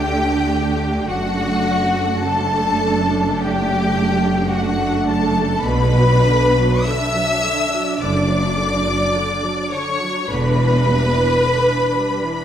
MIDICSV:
0, 0, Header, 1, 6, 480
1, 0, Start_track
1, 0, Key_signature, 2, "major"
1, 0, Tempo, 1140684
1, 460, Time_signature, 4, 2, 24, 8
1, 2376, Tempo, 1207243
1, 2856, Tempo, 1149425
1, 4296, Tempo, 1107011
1, 5225, End_track
2, 0, Start_track
2, 0, Title_t, "Violin section"
2, 0, Program_c, 0, 48
2, 0, Note_on_c, 0, 79, 114
2, 457, Note_on_c, 0, 78, 118
2, 462, Note_off_c, 0, 79, 0
2, 934, Note_off_c, 0, 78, 0
2, 946, Note_on_c, 0, 81, 119
2, 1423, Note_off_c, 0, 81, 0
2, 1423, Note_on_c, 0, 79, 111
2, 1898, Note_on_c, 0, 78, 109
2, 1899, Note_off_c, 0, 79, 0
2, 2135, Note_off_c, 0, 78, 0
2, 2135, Note_on_c, 0, 81, 109
2, 2369, Note_off_c, 0, 81, 0
2, 2371, Note_on_c, 0, 83, 127
2, 2852, Note_on_c, 0, 88, 127
2, 2854, Note_off_c, 0, 83, 0
2, 3335, Note_off_c, 0, 88, 0
2, 3336, Note_on_c, 0, 86, 113
2, 4057, Note_off_c, 0, 86, 0
2, 4059, Note_on_c, 0, 85, 116
2, 4296, Note_off_c, 0, 85, 0
2, 4296, Note_on_c, 0, 83, 118
2, 5225, Note_off_c, 0, 83, 0
2, 5225, End_track
3, 0, Start_track
3, 0, Title_t, "Violin section"
3, 0, Program_c, 1, 48
3, 0, Note_on_c, 1, 67, 97
3, 446, Note_off_c, 1, 67, 0
3, 463, Note_on_c, 1, 66, 108
3, 947, Note_off_c, 1, 66, 0
3, 947, Note_on_c, 1, 69, 97
3, 1413, Note_off_c, 1, 69, 0
3, 1424, Note_on_c, 1, 67, 105
3, 1899, Note_off_c, 1, 67, 0
3, 1899, Note_on_c, 1, 66, 89
3, 2135, Note_off_c, 1, 66, 0
3, 2135, Note_on_c, 1, 69, 87
3, 2373, Note_on_c, 1, 71, 115
3, 2374, Note_off_c, 1, 69, 0
3, 2855, Note_off_c, 1, 71, 0
3, 2857, Note_on_c, 1, 76, 112
3, 3328, Note_off_c, 1, 76, 0
3, 3339, Note_on_c, 1, 74, 97
3, 4044, Note_off_c, 1, 74, 0
3, 4059, Note_on_c, 1, 73, 93
3, 4295, Note_on_c, 1, 71, 120
3, 4296, Note_off_c, 1, 73, 0
3, 5225, Note_off_c, 1, 71, 0
3, 5225, End_track
4, 0, Start_track
4, 0, Title_t, "Viola section"
4, 0, Program_c, 2, 48
4, 0, Note_on_c, 2, 57, 82
4, 0, Note_on_c, 2, 62, 76
4, 443, Note_off_c, 2, 62, 0
4, 444, Note_off_c, 2, 57, 0
4, 461, Note_on_c, 2, 57, 78
4, 461, Note_on_c, 2, 62, 77
4, 936, Note_off_c, 2, 57, 0
4, 936, Note_off_c, 2, 62, 0
4, 945, Note_on_c, 2, 62, 83
4, 947, Note_on_c, 2, 57, 79
4, 1881, Note_off_c, 2, 62, 0
4, 1882, Note_off_c, 2, 57, 0
4, 1900, Note_on_c, 2, 57, 85
4, 1901, Note_on_c, 2, 62, 85
4, 2366, Note_off_c, 2, 57, 0
4, 2366, Note_off_c, 2, 62, 0
4, 2373, Note_on_c, 2, 62, 77
4, 2375, Note_on_c, 2, 50, 75
4, 2483, Note_off_c, 2, 50, 0
4, 2493, Note_on_c, 2, 54, 71
4, 2613, Note_on_c, 2, 50, 73
4, 2614, Note_off_c, 2, 54, 0
4, 2735, Note_off_c, 2, 50, 0
4, 2738, Note_on_c, 2, 54, 74
4, 2856, Note_off_c, 2, 54, 0
4, 2856, Note_on_c, 2, 50, 77
4, 2978, Note_off_c, 2, 50, 0
4, 2982, Note_on_c, 2, 54, 69
4, 3100, Note_off_c, 2, 54, 0
4, 3101, Note_on_c, 2, 50, 66
4, 3217, Note_on_c, 2, 54, 71
4, 3219, Note_off_c, 2, 50, 0
4, 3332, Note_on_c, 2, 50, 79
4, 3336, Note_off_c, 2, 54, 0
4, 3445, Note_off_c, 2, 50, 0
4, 3454, Note_on_c, 2, 54, 69
4, 3573, Note_off_c, 2, 54, 0
4, 3573, Note_on_c, 2, 50, 75
4, 3692, Note_off_c, 2, 50, 0
4, 3692, Note_on_c, 2, 54, 70
4, 3813, Note_off_c, 2, 54, 0
4, 3814, Note_on_c, 2, 50, 74
4, 3933, Note_on_c, 2, 54, 66
4, 3935, Note_off_c, 2, 50, 0
4, 4052, Note_on_c, 2, 50, 68
4, 4056, Note_off_c, 2, 54, 0
4, 4174, Note_off_c, 2, 50, 0
4, 4175, Note_on_c, 2, 54, 72
4, 4277, Note_off_c, 2, 62, 0
4, 4289, Note_on_c, 2, 62, 72
4, 4290, Note_on_c, 2, 50, 69
4, 4294, Note_off_c, 2, 54, 0
4, 4404, Note_off_c, 2, 50, 0
4, 4414, Note_on_c, 2, 52, 64
4, 4532, Note_off_c, 2, 52, 0
4, 4534, Note_on_c, 2, 55, 65
4, 4650, Note_off_c, 2, 55, 0
4, 4653, Note_on_c, 2, 52, 67
4, 4769, Note_off_c, 2, 52, 0
4, 4770, Note_on_c, 2, 50, 67
4, 4888, Note_off_c, 2, 50, 0
4, 4891, Note_on_c, 2, 52, 61
4, 5010, Note_off_c, 2, 52, 0
4, 5013, Note_on_c, 2, 55, 62
4, 5134, Note_off_c, 2, 55, 0
4, 5135, Note_on_c, 2, 52, 62
4, 5225, Note_off_c, 2, 52, 0
4, 5225, Note_off_c, 2, 62, 0
4, 5225, End_track
5, 0, Start_track
5, 0, Title_t, "Cello section"
5, 0, Program_c, 3, 48
5, 0, Note_on_c, 3, 50, 82
5, 460, Note_on_c, 3, 42, 87
5, 462, Note_off_c, 3, 50, 0
5, 2357, Note_off_c, 3, 42, 0
5, 2376, Note_on_c, 3, 47, 92
5, 2776, Note_off_c, 3, 47, 0
5, 3336, Note_on_c, 3, 42, 85
5, 3733, Note_off_c, 3, 42, 0
5, 4296, Note_on_c, 3, 40, 88
5, 4689, Note_off_c, 3, 40, 0
5, 5225, End_track
6, 0, Start_track
6, 0, Title_t, "Double bass section"
6, 0, Program_c, 4, 48
6, 0, Note_on_c, 4, 38, 80
6, 460, Note_off_c, 4, 38, 0
6, 460, Note_on_c, 4, 30, 80
6, 2358, Note_off_c, 4, 30, 0
6, 2375, Note_on_c, 4, 35, 92
6, 2776, Note_off_c, 4, 35, 0
6, 3336, Note_on_c, 4, 30, 90
6, 3732, Note_off_c, 4, 30, 0
6, 4296, Note_on_c, 4, 28, 82
6, 4689, Note_off_c, 4, 28, 0
6, 5225, End_track
0, 0, End_of_file